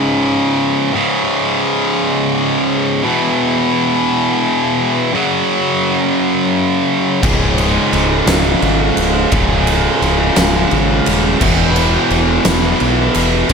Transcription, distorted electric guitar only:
0.00 0.91 C#2 medium
0.00 0.92 G#2 medium
0.00 0.93 C#3 loud
0.93 3.01 C#2 loud
0.93 3.02 G#2 loud
0.93 3.03 C#3 loud
3.03 5.11 E2 medium
3.03 5.12 B2 loud
3.03 5.12 E3 loud
5.13 7.20 F#2 medium
5.13 7.21 C#3 medium
5.13 7.22 F#3 loud
7.22 9.29 C#2 medium
7.22 9.30 G#2 loud
7.22 9.31 C#3 loud
9.32 11.39 C#2 medium
9.32 11.40 G#2 medium
9.32 11.40 C#3 loud
11.40 13.48 E2 medium
11.40 13.49 B2 loud
11.40 13.49 E3 loud
13.50 13.53 F#2 medium

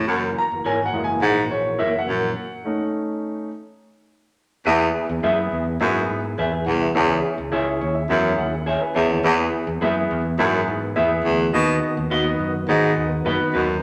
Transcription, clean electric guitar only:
0.65 0.78 E4 medium
0.65 0.78 A#4 loud
0.65 0.79 C#5 medium
1.79 1.92 E4 medium
1.79 1.92 A#4 medium
1.79 1.93 C#5 medium
5.23 5.36 G#4 medium
5.23 5.37 B4 medium
5.23 5.37 E5 loud
6.38 6.51 G#4 medium
6.38 6.51 B4 medium
6.38 6.51 E5 medium
7.52 7.65 G#4 medium
7.52 7.65 C#5 medium
7.52 7.66 E5 medium
8.66 8.80 G#4 medium
8.66 8.80 C#5 medium
8.66 8.80 E5 medium
8.95 9.06 G#4 medium
8.95 9.06 C#5 medium
8.95 9.06 E5 medium
9.81 9.94 G#4 medium
9.81 9.95 B4 medium
9.81 9.95 E5 medium
10.96 11.09 G#4 medium
10.96 11.09 B4 medium
10.96 11.10 E5 medium
12.10 12.24 F#4 medium
12.10 12.24 B4 loud
12.10 12.24 D#5 loud
13.25 13.38 F#4 medium
13.25 13.39 B4 medium
13.25 13.39 D#5 medium
13.53 13.64 F#4 medium
13.53 13.64 B4 medium
13.53 13.65 D#5 medium

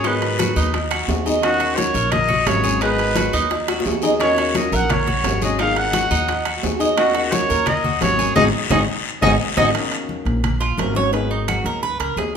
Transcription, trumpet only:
0.07 0.75 B4 loud
1.43 1.78 F#4 loud
1.77 2.13 C#5 loud
2.11 2.49 D#5 loud
2.47 2.82 C#5 loud
2.83 3.48 B4 loud
4.21 4.53 C#5 loud
4.56 4.76 D#5 medium
4.75 4.93 F#5 loud
4.92 5.43 C#5 medium
5.44 5.59 D#5 medium
5.61 5.79 F5 loud
5.78 6.46 F#5 loud
6.97 7.34 F#4 loud
7.32 7.69 C#5 loud
7.68 8.02 D#5 loud
8.03 8.34 C#5 loud
8.36 8.44 D#5 loud
8.71 8.79 D#5 medium
9.22 9.31 D#5 loud
9.57 9.66 D#5 loud

